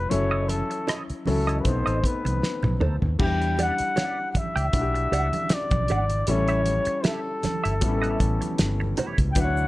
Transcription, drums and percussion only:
0.11 closed hi-hat medium
0.11 muted conga soft
0.11 low conga medium
0.49 closed hi-hat medium
0.49 muted conga soft
0.49 high conga soft
0.71 closed hi-hat soft
0.87 cross-stick loud
0.87 closed hi-hat medium
0.87 muted conga soft
1.10 closed hi-hat soft
1.26 cross-stick soft
1.26 open hi-hat soft
1.26 muted conga soft
1.26 high conga medium
1.49 closed hi-hat soft
1.65 kick medium
1.65 closed hi-hat medium
1.65 muted conga soft
1.65 low conga medium
1.87 closed hi-hat soft
2.04 kick medium
2.04 closed hi-hat medium
2.25 closed hi-hat soft
2.25 high conga medium
2.42 snare medium
2.42 muted conga soft
2.63 high tom medium
2.63 high conga medium
2.81 mid tom medium
2.81 muted conga soft
2.81 low conga medium
3.02 floor tom medium
3.19 kick loud
3.19 crash medium
3.19 low conga medium
3.42 closed hi-hat soft
3.57 closed hi-hat medium
3.57 muted conga soft
3.57 high conga soft
3.78 closed hi-hat soft
3.96 snare medium
3.96 closed hi-hat medium
3.96 muted conga soft
4.34 kick medium
4.34 closed hi-hat medium
4.34 muted conga soft
4.34 high conga medium
4.57 closed hi-hat soft
4.73 kick medium
4.73 closed hi-hat medium
4.73 muted conga soft
4.73 low conga medium
4.95 closed hi-hat soft
5.12 closed hi-hat medium
5.12 muted conga soft
5.33 closed hi-hat soft
5.33 high conga medium
5.49 snare loud
5.49 closed hi-hat medium
5.49 muted conga soft
5.70 kick loud
5.70 closed hi-hat soft
5.70 high conga medium
5.88 closed hi-hat medium
5.88 muted conga soft
5.88 low conga medium
6.10 closed hi-hat soft
6.27 closed hi-hat medium
6.27 muted conga soft
6.27 low conga medium
6.48 closed hi-hat soft
6.66 closed hi-hat medium
6.66 muted conga soft
6.66 high conga soft
6.85 closed hi-hat soft
7.04 snare medium
7.04 closed hi-hat medium
7.04 muted conga soft
7.43 snare soft
7.43 closed hi-hat medium
7.43 muted conga soft
7.43 high conga medium
7.65 closed hi-hat soft
7.81 kick medium
7.81 closed hi-hat loud
7.81 muted conga soft
7.81 low conga medium
8.04 closed hi-hat soft
8.20 kick medium
8.20 closed hi-hat medium
8.42 closed hi-hat soft
8.42 high conga medium
8.58 snare loud
8.58 closed hi-hat medium
8.81 high conga medium
8.97 closed hi-hat medium
8.97 muted conga soft
8.97 low conga medium
9.18 kick medium
9.18 closed hi-hat soft
9.35 kick loud
9.35 closed hi-hat medium
9.35 muted conga soft
9.35 low conga medium
9.35 shaker medium
9.57 shaker soft

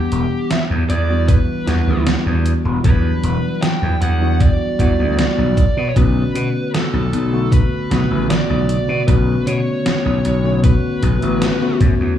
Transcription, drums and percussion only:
0.12 closed hi-hat medium
0.51 snare loud
0.51 closed hi-hat medium
0.90 closed hi-hat medium
1.28 kick loud
1.28 closed hi-hat medium
1.68 snare medium
1.68 closed hi-hat medium
2.07 snare loud
2.07 closed hi-hat medium
2.46 closed hi-hat medium
2.84 kick loud
2.84 closed hi-hat medium
3.24 closed hi-hat medium
3.62 snare loud
3.62 closed hi-hat medium
4.02 closed hi-hat medium
4.40 kick loud
4.40 closed hi-hat medium
4.79 kick medium
4.79 closed hi-hat medium
5.19 snare loud
5.19 closed hi-hat medium
5.57 kick loud
5.57 closed hi-hat medium
5.96 kick loud
5.96 closed hi-hat medium
6.35 closed hi-hat medium
6.75 snare loud
6.75 closed hi-hat medium
7.13 closed hi-hat medium
7.52 kick loud
7.52 closed hi-hat medium
7.91 snare medium
7.91 closed hi-hat medium
8.30 snare loud
8.30 closed hi-hat medium
8.69 closed hi-hat medium
9.08 kick loud
9.08 closed hi-hat medium
9.47 closed hi-hat medium
9.86 snare loud
9.86 closed hi-hat medium
10.25 closed hi-hat medium
10.64 kick loud
10.64 closed hi-hat medium
11.03 kick medium
11.03 closed hi-hat medium
11.22 closed hi-hat soft
11.42 snare loud
11.42 closed hi-hat medium
11.80 kick loud
11.80 closed hi-hat medium

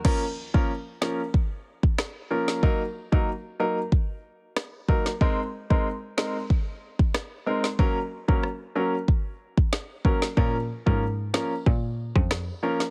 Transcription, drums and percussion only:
0.05 kick loud
0.05 crash medium
0.54 kick medium
1.02 snare loud
1.34 kick loud
1.83 kick loud
1.98 cross-stick loud
1.98 snare loud
2.48 snare medium
2.63 kick loud
3.12 kick medium
3.92 kick loud
4.57 cross-stick loud
4.57 snare loud
4.88 kick medium
5.06 snare medium
5.21 kick loud
5.70 kick medium
6.18 snare loud
6.50 kick loud
6.99 kick medium
7.14 cross-stick loud
7.14 snare loud
7.64 snare medium
7.79 kick loud
8.28 kick medium
8.43 cross-stick medium
9.08 kick loud
9.57 kick loud
9.73 snare loud
10.05 kick medium
10.22 snare medium
10.37 kick loud
10.87 kick medium
11.34 snare loud
11.66 kick loud
12.16 kick loud
12.31 cross-stick loud
12.31 snare loud
12.80 snare medium

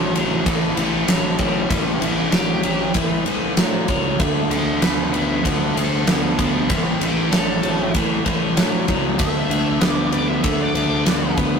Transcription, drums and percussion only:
0.16 ride medium
0.46 kick loud
0.46 ride medium
0.77 ride medium
1.08 snare loud
1.08 ride loud
1.39 kick medium
1.39 ride medium
1.71 kick loud
1.71 ride medium
2.02 ride medium
2.32 snare medium
2.32 ride medium
2.63 ride medium
2.94 kick medium
2.94 ride medium
3.26 ride medium
3.57 snare loud
3.57 ride medium
3.88 kick medium
3.88 ride medium
4.20 kick loud
4.20 ride medium
4.51 ride medium
4.82 snare medium
4.82 ride medium
5.14 ride medium
5.45 kick medium
5.45 ride medium
5.77 ride medium
6.07 snare loud
6.07 ride loud
6.39 kick medium
6.39 ride medium
6.70 kick loud
6.70 ride loud
7.01 ride medium
7.32 snare loud
7.32 ride medium
7.63 ride medium
7.94 kick loud
7.94 ride medium
8.26 kick medium
8.26 ride medium
8.57 snare loud
8.57 ride medium
8.88 kick medium
8.88 ride medium
9.19 kick loud
9.19 ride medium
9.51 ride medium
9.81 snare loud
9.81 ride medium
10.12 ride medium
10.44 kick loud
10.44 ride medium
10.75 ride medium
11.06 snare loud
11.06 ride medium
11.37 kick medium
11.37 ride medium

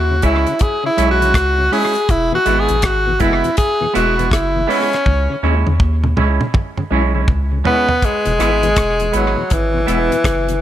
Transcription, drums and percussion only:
0.22 kick medium
0.22 closed hi-hat medium
0.47 closed hi-hat soft
0.59 kick loud
0.59 closed hi-hat medium
0.98 closed hi-hat medium
1.22 closed hi-hat medium
1.34 kick loud
1.34 cross-stick loud
1.34 closed hi-hat medium
1.73 open hi-hat medium
1.95 closed hi-hat medium
2.09 kick loud
2.09 closed hi-hat medium
2.46 closed hi-hat medium
2.69 closed hi-hat medium
2.82 kick loud
2.82 cross-stick loud
2.82 closed hi-hat loud
3.20 kick medium
3.20 closed hi-hat medium
3.44 closed hi-hat soft
3.57 kick loud
3.57 closed hi-hat medium
3.95 closed hi-hat medium
4.19 closed hi-hat soft
4.31 kick loud
4.31 cross-stick loud
4.31 closed hi-hat medium
4.70 open hi-hat medium
4.93 cross-stick medium
4.93 closed hi-hat soft
5.06 kick loud
5.06 high tom medium
5.67 high tom medium
5.80 kick loud
6.04 mid tom medium
6.17 mid tom medium
6.41 mid tom medium
6.54 kick loud
6.54 mid tom medium
6.77 mid tom medium
7.28 kick loud
7.28 floor tom loud
7.65 floor tom loud
7.89 floor tom medium
8.02 kick medium
8.02 closed hi-hat medium
8.25 closed hi-hat medium
8.40 cross-stick medium
8.40 closed hi-hat medium
8.63 closed hi-hat soft
8.76 kick loud
8.76 cross-stick loud
8.76 closed hi-hat loud
9.00 closed hi-hat medium
9.13 closed hi-hat medium
9.50 kick loud
9.50 closed hi-hat medium
9.88 closed hi-hat medium
10.12 closed hi-hat medium
10.24 kick loud
10.24 cross-stick loud
10.24 closed hi-hat medium
10.48 closed hi-hat soft

